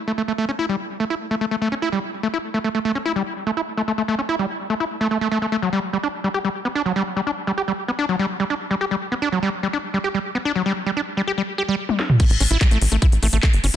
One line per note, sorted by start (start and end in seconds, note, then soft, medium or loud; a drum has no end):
0.08 0.12 A3 medium
0.18 0.22 A3 medium
0.28 0.33 A3 medium
0.38 0.45 A3 loud
0.49 0.51 C#4 medium
0.59 0.66 E4 loud
0.69 0.76 G3 medium
1.00 1.05 A3 medium
1.10 1.15 E4 medium
1.31 1.35 A3 medium
1.41 1.46 A3 medium
1.51 1.56 A3 medium
1.62 1.68 A3 loud
1.72 1.75 C#4 medium
1.82 1.89 E4 loud
1.92 1.99 G3 medium
2.23 2.28 A3 medium
2.34 2.38 E4 medium
2.54 2.59 A3 medium
2.64 2.69 A3 medium
2.75 2.79 A3 medium
2.85 2.92 A3 loud
2.95 2.98 C#4 medium
3.06 3.12 E4 loud
3.16 3.23 G3 medium
3.47 3.51 A3 medium
3.57 3.61 E4 medium
3.77 3.82 A3 medium
3.88 3.92 A3 medium
3.98 4.02 A3 medium
4.08 4.15 A3 loud
4.19 4.21 C#4 medium
4.29 4.36 E4 loud
4.39 4.46 G3 medium
4.70 4.74 A3 medium
4.80 4.85 E4 medium
5.01 5.08 A3 loud
5.11 5.18 A3 medium
5.21 5.28 A3 loud
5.32 5.38 A3 loud
5.42 5.46 A3 medium
5.52 5.57 A3 loud
5.62 5.69 F#3 medium
5.73 5.79 G3 loud
5.93 5.98 G3 medium
6.03 6.08 D4 medium
6.24 6.29 G3 medium
6.34 6.39 G4 medium
6.45 6.49 G3 medium
6.65 6.68 B3 medium
6.75 6.82 D4 loud
6.86 6.92 F#3 medium
6.96 7.03 G3 loud
7.16 7.21 G3 medium
7.27 7.31 D4 medium
7.47 7.52 G3 medium
7.58 7.62 G4 medium
7.68 7.72 G3 medium
7.88 7.91 B3 medium
7.99 8.05 D4 loud
8.09 8.16 F#3 medium
8.19 8.26 G3 medium
8.40 8.44 G3 medium
8.50 8.55 D4 medium
8.71 8.75 G3 medium
8.81 8.85 G4 medium
8.91 8.96 G3 medium
9.12 9.14 B3 medium
9.22 9.29 D4 loud
9.32 9.39 F#3 medium
9.43 9.49 G3 loud
9.63 9.68 G3 medium
9.73 9.78 D4 medium
9.94 9.98 G3 medium
10.04 10.09 G4 medium
10.14 10.19 G3 medium
10.35 10.38 B3 medium
10.45 10.52 D4 loud
10.56 10.62 F#3 medium
10.66 10.73 G3 loud
10.86 10.91 G3 medium
10.97 11.01 D4 medium
11.17 11.22 G3 medium
11.27 11.32 G4 medium
11.38 11.42 G3 medium
11.58 11.63 G4 medium
11.69 11.75 G3 loud
11.89 high tom medium
11.99 snare medium
12.10 mid tom medium
12.20 12.24 A3 medium
12.20 kick loud
12.20 closed hi-hat medium
12.20 crash loud
12.30 12.36 A1 medium
12.30 closed hi-hat medium
12.40 12.47 A1 medium
12.40 12.43 C#4 medium
12.40 open hi-hat loud
12.51 12.57 A1 loud
12.51 12.57 E4 loud
12.51 closed hi-hat medium
12.61 12.68 G3 medium
12.61 kick loud
12.61 clap loud
12.61 closed hi-hat medium
12.71 12.77 A1 medium
12.71 12.78 A3 loud
12.71 closed hi-hat medium
12.81 12.88 A1 loud
12.81 open hi-hat loud
12.92 12.98 A1 medium
12.92 12.96 A3 medium
12.92 closed hi-hat medium
13.02 13.07 E4 medium
13.02 kick loud
13.02 closed hi-hat medium
13.12 13.19 A1 medium
13.12 closed hi-hat medium
13.23 13.29 A1 loud
13.23 13.27 A3 medium
13.23 open hi-hat loud
13.33 13.39 A1 medium
13.33 13.37 A3 medium
13.33 closed hi-hat medium
13.43 13.48 A3 medium
13.43 kick loud
13.43 clap loud
13.43 closed hi-hat medium
13.53 13.60 G1 medium
13.53 closed hi-hat medium
13.64 13.70 G1 loud
13.64 13.66 C#4 medium
13.64 open hi-hat loud